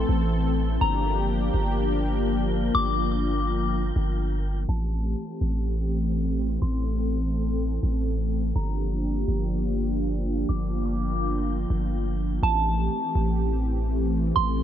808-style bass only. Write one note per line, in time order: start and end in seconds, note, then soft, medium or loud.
0.09 0.79 A1 loud
0.81 1.51 G1 loud
1.54 2.71 G1 loud
2.75 3.92 G1 loud
3.96 4.66 G1 loud
4.69 5.15 A1 loud
5.41 6.58 A1 loud
6.62 7.79 A1 loud
7.83 8.53 A1 loud
8.56 9.25 G1 loud
9.28 10.45 G1 loud
10.49 11.66 G1 loud
11.70 12.40 G1 loud
12.43 12.89 A1 loud
13.15 14.32 A1 loud
14.36 14.63 A1 loud